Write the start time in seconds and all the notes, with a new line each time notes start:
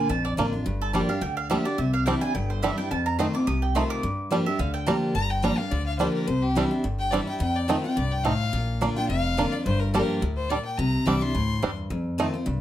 0.09 A#1 F2 A5
0.25 D5
0.37 A1 D3 A#3 D4 F4
0.53 D4 F4
0.66 G1 G2
0.81 A4
0.93 F3 G3 A#3 D4 G4 D5
1.09 D4 G4 F5
1.21 D2 D3 G5
1.37 F5
1.50 F3 G3 A#3 D4 G4 E5
1.65 D4 G4 D5
1.78 C2 C3 E5
1.93 F5
2.06 E3 G3 C4 D4 E4 G5
2.21 D4 E4 G#5
2.34 G1 G2 G5
2.50 C5
2.62 E3 G3 C4 D4 E4 E5
2.78 D4 E4 G5
2.91 F2 A5
3.06 A#5
3.19 D#3 A3 C4 D#4 F4 C6
3.34 C4 F4 D6
3.47 C2 C3 D#6
3.62 G5
3.75 D#3 A3 C4 D#4 F4 C6
3.90 D6
4.03 G2
4.31 F3 G3 A#3 D4 G4
4.46 D4 G4 E5
4.59 D2 D3 F5
4.74 G5
4.86 F3 G3 A#3 D4 G4 A#5
5.15 G1 G2 A#5
5.30 G5
5.42 F3 G3 A#3 D4 G4 A#5
5.58 D4 G4 F5
5.71 D2 D3 D5
5.86 F5
5.99 F3 G3 A#3 D4 G4 C5
6.14 A#4
6.27 C2 C3 C5
6.43 G4
6.55 E3 G3 C4 D4 E4
6.71 D4 E4
6.84 G1 G2
6.99 G5
7.12 E3 G3 C4 D4 E4 D5
7.27 D4 E4 G5
7.40 F2 G5
7.56 D5
7.68 D#3 A3 C4 D#4 F4 G5
7.83 C4 F4 G5
7.97 C2 G2 D5
8.11 G5
8.24 A2 A3 C4 D#4 F5
8.53 A#1 A#2
8.81 D3 A#3 D4 F4
8.96 D4 F4 G5
9.09 F1 F2 F5
9.37 D3 A#3 D4 F4
9.52 D4 F4 D5
9.65 G1 G2 C5
9.80 A#4
9.93 F3 G3 A#3 D4 G4 A#4
10.22 D2 A2
10.37 C5
10.50 A#2 G3 D4 D5
10.65 G5
10.78 C2 C3 A#5
11.06 C2 E3 G3 C4 D4 E4 D6
11.21 D4 E4 C6
11.34 D2 A2
11.62 E2 G2 G3 C4 D4
11.90 F2
12.18 D#3 A3 C4 D#4 F4
12.34 C4 F4
12.46 C2 G2